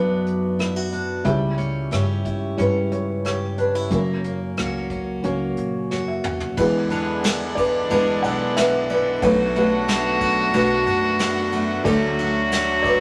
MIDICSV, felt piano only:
0, 0, Header, 1, 2, 480
1, 0, Start_track
1, 0, Key_signature, 2, "minor"
1, 0, Tempo, 664452
1, 906, Time_signature, 4, 2, 24, 8
1, 5713, Tempo, 657895
1, 9429, End_track
2, 0, Start_track
2, 0, Title_t, "Felt piano"
2, 0, Program_c, 0, 0
2, 0, Control_c, 0, 64, 127
2, 0, Note_on_c, 0, 35, 49
2, 0, Note_on_c, 0, 47, 48
2, 0, Note_on_c, 0, 54, 52
2, 0, Note_on_c, 0, 59, 48
2, 0, Note_on_c, 0, 62, 55
2, 0, Note_on_c, 0, 66, 64
2, 0, Note_on_c, 0, 71, 66
2, 0, Note_on_c, 0, 74, 96
2, 0, Note_on_c, 0, 76, 76
2, 0, Note_on_c, 0, 78, 77
2, 399, Note_off_c, 0, 74, 0
2, 546, Note_off_c, 0, 54, 0
2, 548, Note_off_c, 0, 59, 0
2, 548, Note_off_c, 0, 62, 0
2, 550, Note_off_c, 0, 71, 0
2, 643, Note_off_c, 0, 66, 0
2, 876, Note_off_c, 0, 35, 0
2, 876, Note_off_c, 0, 47, 0
2, 896, Note_on_c, 0, 55, 59
2, 898, Note_on_c, 0, 49, 52
2, 898, Note_on_c, 0, 61, 53
2, 900, Note_on_c, 0, 37, 51
2, 900, Note_on_c, 0, 64, 53
2, 901, Note_on_c, 0, 73, 60
2, 902, Note_off_c, 0, 76, 0
2, 902, Note_on_c, 0, 76, 84
2, 912, Note_on_c, 0, 67, 61
2, 916, Control_c, 0, 64, 0
2, 917, Note_off_c, 0, 78, 0
2, 1064, Control_c, 0, 64, 127
2, 1382, Note_off_c, 0, 73, 0
2, 1392, Note_on_c, 0, 73, 77
2, 1396, Note_off_c, 0, 76, 0
2, 1500, Note_off_c, 0, 55, 0
2, 1501, Note_off_c, 0, 61, 0
2, 1502, Note_off_c, 0, 64, 0
2, 1836, Note_off_c, 0, 67, 0
2, 1851, Note_off_c, 0, 73, 0
2, 1856, Note_on_c, 0, 55, 58
2, 1860, Note_on_c, 0, 61, 51
2, 1861, Note_on_c, 0, 64, 54
2, 1862, Note_on_c, 0, 73, 61
2, 1874, Note_on_c, 0, 71, 71
2, 2097, Note_off_c, 0, 73, 0
2, 2108, Note_on_c, 0, 73, 75
2, 2115, Note_off_c, 0, 71, 0
2, 2341, Note_off_c, 0, 73, 0
2, 2352, Note_on_c, 0, 73, 79
2, 2459, Note_off_c, 0, 55, 0
2, 2462, Note_off_c, 0, 61, 0
2, 2462, Note_off_c, 0, 64, 0
2, 2590, Note_on_c, 0, 71, 66
2, 2593, Note_off_c, 0, 73, 0
2, 2787, Note_off_c, 0, 49, 0
2, 2788, Note_off_c, 0, 37, 0
2, 2819, Note_on_c, 0, 30, 52
2, 2819, Note_on_c, 0, 42, 51
2, 2819, Note_on_c, 0, 58, 58
2, 2819, Note_on_c, 0, 61, 55
2, 2822, Note_on_c, 0, 66, 52
2, 2825, Note_on_c, 0, 73, 64
2, 2828, Control_c, 0, 64, 0
2, 2831, Note_off_c, 0, 71, 0
2, 2832, Note_on_c, 0, 70, 65
2, 2968, Control_c, 0, 64, 127
2, 3421, Note_off_c, 0, 58, 0
2, 3421, Note_off_c, 0, 61, 0
2, 3422, Note_off_c, 0, 66, 0
2, 3423, Note_off_c, 0, 73, 0
2, 3775, Note_on_c, 0, 58, 65
2, 3781, Note_on_c, 0, 61, 62
2, 3784, Note_on_c, 0, 66, 64
2, 3785, Note_on_c, 0, 73, 75
2, 4243, Note_off_c, 0, 70, 0
2, 4257, Note_off_c, 0, 73, 0
2, 4268, Note_on_c, 0, 73, 59
2, 4381, Note_off_c, 0, 73, 0
2, 4388, Note_off_c, 0, 58, 0
2, 4391, Note_off_c, 0, 61, 0
2, 4391, Note_on_c, 0, 76, 55
2, 4392, Note_off_c, 0, 66, 0
2, 4503, Note_off_c, 0, 76, 0
2, 4517, Note_on_c, 0, 78, 56
2, 4722, Note_off_c, 0, 30, 0
2, 4722, Note_off_c, 0, 42, 0
2, 4738, Note_off_c, 0, 78, 0
2, 4753, Note_on_c, 0, 71, 76
2, 4761, Control_c, 0, 64, 0
2, 4762, Note_on_c, 0, 62, 56
2, 4765, Note_on_c, 0, 52, 56
2, 4765, Note_on_c, 0, 56, 66
2, 4766, Note_on_c, 0, 40, 53
2, 4768, Note_on_c, 0, 64, 57
2, 4773, Note_on_c, 0, 68, 64
2, 4879, Control_c, 0, 64, 127
2, 5358, Note_off_c, 0, 62, 0
2, 5360, Note_off_c, 0, 56, 0
2, 5361, Note_off_c, 0, 64, 0
2, 5453, Note_off_c, 0, 68, 0
2, 5456, Note_on_c, 0, 74, 99
2, 5460, Note_off_c, 0, 71, 0
2, 5471, Note_on_c, 0, 71, 68
2, 5707, Note_off_c, 0, 71, 0
2, 5709, Note_on_c, 0, 56, 70
2, 5713, Note_on_c, 0, 62, 61
2, 5714, Note_on_c, 0, 64, 61
2, 5718, Note_on_c, 0, 71, 75
2, 5944, Note_on_c, 0, 78, 97
2, 5946, Note_off_c, 0, 74, 0
2, 5957, Note_on_c, 0, 74, 74
2, 6178, Note_off_c, 0, 74, 0
2, 6191, Note_on_c, 0, 76, 95
2, 6196, Note_off_c, 0, 71, 0
2, 6196, Note_off_c, 0, 78, 0
2, 6207, Note_on_c, 0, 71, 76
2, 6313, Note_off_c, 0, 56, 0
2, 6316, Note_off_c, 0, 62, 0
2, 6316, Note_off_c, 0, 64, 0
2, 6423, Note_off_c, 0, 71, 0
2, 6439, Note_off_c, 0, 76, 0
2, 6441, Note_on_c, 0, 74, 79
2, 6453, Note_on_c, 0, 71, 64
2, 6650, Note_off_c, 0, 52, 0
2, 6651, Note_off_c, 0, 40, 0
2, 6664, Note_off_c, 0, 71, 0
2, 6671, Note_on_c, 0, 62, 60
2, 6672, Note_on_c, 0, 57, 69
2, 6673, Note_on_c, 0, 47, 57
2, 6673, Note_on_c, 0, 78, 63
2, 6674, Note_on_c, 0, 35, 57
2, 6675, Note_on_c, 0, 71, 78
2, 6680, Control_c, 0, 64, 0
2, 6682, Note_on_c, 0, 73, 84
2, 6684, Note_off_c, 0, 74, 0
2, 6694, Note_on_c, 0, 69, 69
2, 6819, Control_c, 0, 64, 127
2, 6907, Note_off_c, 0, 69, 0
2, 6911, Note_off_c, 0, 71, 0
2, 6922, Note_on_c, 0, 71, 83
2, 6924, Note_off_c, 0, 73, 0
2, 6931, Note_on_c, 0, 67, 56
2, 7272, Note_off_c, 0, 62, 0
2, 7273, Note_off_c, 0, 57, 0
2, 7274, Note_off_c, 0, 78, 0
2, 7606, Note_off_c, 0, 71, 0
2, 7611, Note_off_c, 0, 67, 0
2, 7626, Note_on_c, 0, 57, 74
2, 7630, Note_on_c, 0, 62, 70
2, 7631, Note_on_c, 0, 66, 75
2, 7633, Note_on_c, 0, 71, 83
2, 8231, Note_off_c, 0, 57, 0
2, 8233, Note_off_c, 0, 62, 0
2, 8233, Note_off_c, 0, 66, 0
2, 8234, Note_off_c, 0, 71, 0
2, 8562, Note_off_c, 0, 35, 0
2, 8562, Note_off_c, 0, 47, 0
2, 8580, Note_on_c, 0, 57, 70
2, 8581, Note_on_c, 0, 66, 68
2, 8583, Note_on_c, 0, 50, 58
2, 8583, Note_on_c, 0, 62, 68
2, 8584, Note_on_c, 0, 38, 60
2, 8586, Note_on_c, 0, 69, 87
2, 8589, Note_on_c, 0, 74, 77
2, 8601, Control_c, 0, 64, 0
2, 8718, Control_c, 0, 64, 127
2, 9188, Note_off_c, 0, 57, 0
2, 9188, Note_off_c, 0, 66, 0
2, 9189, Note_off_c, 0, 62, 0
2, 9192, Note_off_c, 0, 74, 0
2, 9301, Note_on_c, 0, 74, 97
2, 9330, Note_off_c, 0, 69, 0
2, 9333, Note_on_c, 0, 71, 70
2, 9429, Note_off_c, 0, 38, 0
2, 9429, Note_off_c, 0, 50, 0
2, 9429, Note_off_c, 0, 71, 0
2, 9429, Note_off_c, 0, 74, 0
2, 9429, End_track
0, 0, End_of_file